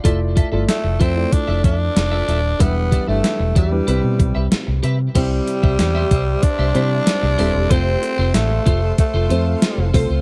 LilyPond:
<<
  \new Staff \with { instrumentName = "Ambient pad" } { \time 4/4 \key c \major \tempo 4 = 94 << { r1 | r1 | c'''1~ | c'''1 | } \\ { r1 | r1 | <g' c'' e''>1 | <a' c'' f''>1 | } >> }
  \new Staff \with { instrumentName = "Clean electric guitar" } { \time 4/4 \key c \major <f' a' e''>16 r16 <f' a' e''>16 <f' a' e''>16 r8 <f' a' e''>16 r8 <f' a' e''>16 <f' a' e''>16 r8 <f' a' e''>16 <f' a' e''>16 r16 | <g' d'' e''>16 r16 <g' d'' e''>16 <g' d'' e''>16 r8 <g' d'' e''>16 r16 <g' b' e''>16 r8 <g' b' e''>16 r8 <g' b' e''>16 r16 | <g' c'' e''>16 r8 <g' c'' e''>16 r16 <g' c'' e''>16 <g' c'' e''>16 r8 <g' c'' e''>16 <g' c'' e''>16 r8. <g' c'' e''>16 r16 | <f' a' c''>8 r16 <f' a' c''>16 r8 <f' a' c''>16 r8 <f' a' c''>16 <f' a' c''>16 r8. <f' a' c''>16 <f' a' c''>16 | }
  \new Staff \with { instrumentName = "Grand piano" } { \time 4/4 \key c \major <a e' f' d''>8. <a e' f' d''>8. r16 <a e' f' d''>4.~ <a e' f' d''>16 r8 | <g d' e' b'>8. <g d' e' b'>8. r16 <g d' e' b'>16 <g c' e' b'>4.~ <g c' e' b'>16 r16 | <g c' e' c''>4.~ <g c' e' c''>16 r8. <g c' e' c''>8. r16 <g c' e' a'>8 | <a c' f' c''>4.~ <a c' f' c''>16 r8. <a c' f' c''>8. r16 <a c' f' c''>8 | }
  \new Staff \with { instrumentName = "Grand piano" } { \clef bass \time 4/4 \key c \major r1 | e4. r8 c4. r8 | c4. r2 r8 | r1 | }
  \new Staff \with { instrumentName = "Tenor saxophone" } { \time 4/4 \key c \major r4 a8 c'8 d'8 d'4. | b8. a8. g4. r4 | g2 d'2 | c'4 a4 a4. r8 | }
  \new Staff \with { instrumentName = "Fingered electric bass" } { \clef bass \time 4/4 \key c \major f,,8. g,,16 r16 f,,16 f,8 r16 f,,16 f,8 f,,8 ees,,8 | e,,8. g,,16 r16 e,,16 e,8 c,16 b,16 b,,16 c,16 r16 c,16 c8 | c,8 r16 c,16 e,8 c,8 r16 c,16 c8 r16 c,16 ees,,16 e,,16 | f,,8 r16 f,,16 a,,8 f,,8 r16 f,,16 f,8 r16 f,,16 c,16 cis,16 | }
  \new DrumStaff \with { instrumentName = "Drums" } \drummode { \time 4/4 <hh bd>8 <hh bd>8 <hh sn>8 <hh bd>8 <hh bd>8 <hh bd>8 <hh sn>8 hh8 | <hh bd>8 <hh bd>8 <hh sn>8 <hh bd>8 hh8 <hh bd>8 <hh sn>8 hh8 | <cymc hh bd>8 hh16 bd16 <hh sn>8 <hh bd>8 <hh bd>8 hh8 <hh sn>8 hho8 | <hh bd>8 hh8 <hh sn>8 <hh bd>8 <hh bd>8 hh8 <hh sn>8 <hho bd>8 | }
>>